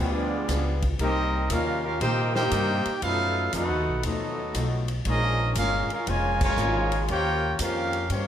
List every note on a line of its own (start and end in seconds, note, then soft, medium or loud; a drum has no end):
0.00 0.47 D2 medium
0.00 0.76 F3 loud
0.00 0.80 F3 medium
0.00 0.34 G3 medium
0.00 0.77 G3 loud
0.00 0.76 G#3 loud
0.00 0.34 B3 medium
0.00 0.76 B3 loud
0.00 0.79 B3 medium
0.00 0.81 B3 medium
0.00 0.80 D4 medium
0.00 0.35 F4 medium
0.00 0.81 F4 medium
0.00 0.35 G#4 medium
0.00 0.80 G#4 medium
0.00 0.81 D5 medium
0.48 0.98 C#2 loud
0.48 0.85 G3 medium
0.48 0.85 B3 medium
0.48 0.85 F4 medium
0.48 0.86 G#4 medium
0.48 kick soft
0.48 snare soft
0.48 hi-hat pedal medium
0.48 ride medium
0.82 kick medium
0.82 ride medium
0.99 1.48 C2 medium
0.99 1.35 C3 soft
0.99 1.23 D#3 medium
0.99 1.47 G3 medium
0.99 1.36 G3 medium
0.99 1.47 A#3 medium
0.99 1.23 A#3 medium
0.99 1.36 A#3 soft
0.99 1.23 C4 medium
0.99 1.48 C4 medium
0.99 1.47 D#4 medium
0.99 1.36 D#4 medium
0.99 1.23 G4 loud
0.99 1.48 G4 medium
0.99 1.48 A#4 medium
0.99 1.48 D#5 loud
0.99 kick soft
0.99 ride medium
1.50 1.99 D#2 loud
1.50 1.86 C3 medium
1.50 1.87 G3 medium
1.50 1.87 A#3 medium
1.50 1.84 C#4 medium
1.50 1.87 D#4 medium
1.50 1.83 F4 medium
1.50 1.83 G4 medium
1.50 1.83 A#4 medium
1.50 1.83 F5 loud
1.50 kick soft
1.50 hi-hat pedal medium
1.50 ride medium
1.84 2.00 C#4 medium
1.84 2.00 F4 medium
1.84 2.00 G4 medium
1.84 2.00 A#4 medium
1.84 2.00 F5 loud
2.00 2.50 A#2 loud
2.00 2.37 C3 medium
2.00 2.79 D#3 loud
2.00 2.38 G3 medium
2.00 2.79 A#3 medium
2.00 2.33 A#3 medium
2.00 2.38 A#3 medium
2.00 2.79 C4 loud
2.00 2.33 D#4 loud
2.00 2.38 D#4 medium
2.00 2.79 G4 loud
2.00 2.33 G4 medium
2.00 2.33 A#4 loud
2.00 2.33 C5 loud
2.00 2.33 G5 loud
2.00 kick soft
2.00 ride medium
2.35 2.99 A#3 loud
2.35 2.99 D#4 loud
2.35 2.99 G4 loud
2.35 2.99 A#4 medium
2.35 2.98 C5 loud
2.35 2.99 G5 loud
2.35 snare medium
2.51 2.83 G2 loud
2.51 2.88 C3 medium
2.51 2.88 G3 medium
2.51 2.88 A#3 medium
2.51 2.88 D#4 medium
2.51 kick soft
2.51 hi-hat pedal medium
2.51 ride medium
2.85 muted upright bass stroke soft
2.85 ride medium
3.02 3.52 F#2 medium
3.02 3.38 B2 soft
3.02 3.38 F3 medium
3.02 3.51 F#3 medium
3.02 3.50 A3 medium
3.02 3.39 A3 medium
3.02 3.51 D#4 loud
3.02 3.39 D#4 medium
3.02 3.51 F4 medium
3.02 3.50 A4 medium
3.02 3.51 B4 medium
3.02 3.50 F5 loud
3.02 kick soft
3.02 ride medium
3.53 3.70 F2 loud
3.53 3.89 B2 medium
3.53 3.89 F3 medium
3.53 3.89 A3 medium
3.53 4.02 A3 medium
3.53 4.01 D#4 medium
3.53 3.90 D#4 medium
3.53 4.01 D#4 medium
3.53 4.02 F#4 medium
3.53 4.01 A4 medium
3.53 4.01 B4 medium
3.53 4.01 F#5 medium
3.53 kick soft
3.53 hi-hat pedal medium
3.53 ride medium
3.70 3.87 D#2 medium
3.87 4.03 B1 medium
4.03 4.53 D#2 medium
4.03 4.40 B2 medium
4.03 4.40 F3 medium
4.03 4.85 F#3 medium
4.03 4.85 A3 medium
4.03 4.41 A3 medium
4.03 4.86 B3 medium
4.03 4.85 D#4 medium
4.03 4.41 D#4 medium
4.03 4.86 F#4 medium
4.03 4.86 A4 medium
4.03 4.86 D#5 medium
4.03 kick soft
4.03 ride medium
4.54 5.04 B1 loud
4.54 4.90 B2 medium
4.54 4.91 F3 medium
4.54 4.91 A3 medium
4.54 4.91 D#4 medium
4.54 kick soft
4.54 hi-hat pedal medium
4.54 ride medium
4.88 ride medium
5.05 5.55 A#1 loud
5.05 5.41 A#2 medium
5.05 5.54 F3 medium
5.05 5.42 G#3 medium
5.05 5.53 G#3 medium
5.05 5.42 C#4 medium
5.05 5.54 C#4 medium
5.05 5.54 D#4 medium
5.05 5.42 F4 medium
5.05 5.54 G#4 medium
5.05 5.54 A#4 medium
5.05 5.54 D#5 loud
5.05 kick soft
5.05 ride medium
5.55 5.88 G1 loud
5.55 5.92 A#2 medium
5.55 5.92 G#3 medium
5.55 5.88 G#3 loud
5.55 5.88 C#4 loud
5.55 5.92 C#4 medium
5.55 5.89 C#4 medium
5.55 5.88 F4 medium
5.55 5.93 F4 medium
5.55 5.89 G#4 loud
5.55 5.89 A#4 medium
5.55 5.89 F5 loud
5.55 kick soft
5.55 hi-hat pedal medium
5.55 ride medium
5.89 6.07 G#3 medium
5.89 6.07 C#4 medium
5.89 6.07 F4 medium
5.89 muted upright bass stroke soft
5.89 ride medium
5.93 6.07 G#4 medium
5.93 6.07 A#4 medium
5.93 6.07 F5 loud
6.07 6.56 F1 medium
6.07 6.43 A#2 medium
6.07 6.40 C#3 loud
6.07 6.41 F3 loud
6.07 6.43 G#3 medium
6.07 6.41 G#3 loud
6.07 6.44 C#4 medium
6.07 6.42 F4 loud
6.07 6.44 F4 medium
6.07 6.42 A#4 medium
6.07 6.42 C#5 loud
6.07 6.42 G#5 loud
6.07 kick soft
6.07 ride medium
6.41 7.05 C#3 loud
6.41 7.05 F3 loud
6.41 7.05 G#3 medium
6.41 7.06 F4 medium
6.41 7.06 A#4 medium
6.41 7.06 C#5 loud
6.41 7.06 G#5 loud
6.41 kick loud
6.41 crash medium
6.56 7.06 G#1 loud
6.56 6.94 A#2 medium
6.56 7.08 C#3 loud
6.56 7.09 G#3 loud
6.56 6.94 G#3 medium
6.56 7.08 A#3 loud
6.56 6.94 C#4 medium
6.56 7.08 F4 loud
6.56 6.94 F4 medium
6.56 hi-hat pedal medium
6.92 ride medium
7.08 7.58 D#2 medium
7.08 7.44 D#3 soft
7.08 7.56 A#3 medium
7.08 7.56 C#4 loud
7.08 7.45 C#4 medium
7.08 7.57 F4 loud
7.08 7.56 G4 loud
7.08 7.45 G4 medium
7.08 7.57 A#4 loud
7.08 7.45 C5 medium
7.08 7.57 C#5 loud
7.08 7.57 G5 loud
7.08 kick soft
7.08 ride medium
7.58 8.08 F2 loud
7.58 7.95 D#3 medium
7.58 8.08 A#3 medium
7.58 8.07 C#4 loud
7.58 7.95 C#4 medium
7.58 8.11 C#4 medium
7.58 8.10 F4 medium
7.58 7.96 G4 medium
7.58 8.10 G4 medium
7.58 8.11 A#4 medium
7.58 7.96 C5 medium
7.58 8.11 F5 loud
7.58 kick soft
7.58 hi-hat pedal medium
7.58 ride loud
7.93 ride medium
8.09 8.27 G2 medium
8.09 8.27 D#3 medium
8.09 8.27 G3 medium
8.09 8.27 A#3 medium
8.09 8.27 C#4 medium
8.09 8.27 F4 medium
8.09 8.27 G4 medium
8.09 8.27 C5 medium
8.09 8.27 C#5 medium
8.09 kick soft
8.09 ride medium